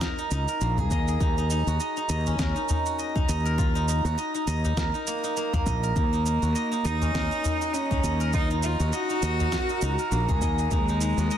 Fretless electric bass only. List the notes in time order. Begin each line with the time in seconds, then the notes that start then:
0.31 C#2
0.61 A#1
0.91 D#2
1.20 D#2
1.67 D#2
2.09 D#2
2.39 D#2
3.29 D#2
4.05 D#2
4.47 D#2
4.77 D#2
5.66 A#1
5.96 D#2
6.43 D#2
6.85 D#2
7.15 D#2
8.04 D#2
8.80 D#2
9.22 D#2
9.82 C#2
10.12 A#1
10.41 D#2
10.71 D#2
11.18 D#2